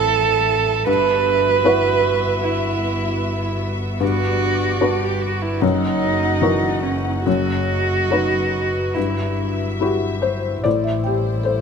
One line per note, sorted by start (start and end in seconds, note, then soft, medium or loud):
0.00 0.88 A1 medium
0.00 0.87 C4 soft
0.00 0.83 E4 soft
0.00 0.86 E4 soft
0.00 0.84 A4 soft
0.00 0.87 A4 medium
0.00 0.84 C5 soft
0.00 0.85 E5 soft
0.85 5.63 G1 medium
0.85 1.63 G2 soft
0.85 5.62 B3 medium
0.85 4.00 F#4 medium
0.85 2.41 B4 loud
0.85 3.97 E5 medium
1.64 3.97 E4 soft
1.64 3.97 F#4 soft
1.64 3.97 B4 soft
2.44 3.59 E4 medium
3.99 4.78 G2 soft
3.99 5.61 G3 soft
3.99 4.97 F#4 medium
3.99 5.61 D5 medium
4.81 5.58 D4 soft
4.81 5.58 F#4 soft
4.81 5.58 B4 soft
5.03 5.23 G4 medium
5.21 5.43 F#4 medium
5.42 5.63 E4 medium
5.60 8.97 F#1 medium
5.60 6.40 F#2 medium
5.60 10.65 F#3 medium
5.60 7.25 A#3 soft
5.60 6.84 D#4 medium
5.60 7.25 F#5 medium
6.42 7.21 E3 soft
6.42 7.22 F#4 soft
6.42 7.22 A#4 soft
6.82 7.24 C#4 medium
7.24 8.08 F#2 soft
7.24 8.96 F#4 medium
7.24 8.96 D#5 soft
8.11 8.92 D#4 soft
8.11 8.92 F#4 soft
8.11 8.93 B4 soft
8.94 10.64 G1 soft
8.94 9.79 G2 soft
8.94 9.80 E4 medium
8.94 10.66 E5 soft
9.81 10.61 E4 soft
9.81 10.62 F#4 soft
9.81 10.62 G4 soft
10.22 10.61 C5 soft
10.64 11.61 A1 soft
10.64 11.61 A2 soft
10.64 11.61 G3 soft
10.64 11.61 E4 soft
10.64 10.76 A4 soft
10.64 11.61 C5 soft
10.64 11.61 D5 medium
10.84 10.96 E5 soft
11.04 11.61 G4 soft
11.04 11.16 G5 soft
11.44 11.56 A4 medium
11.44 11.61 C5 soft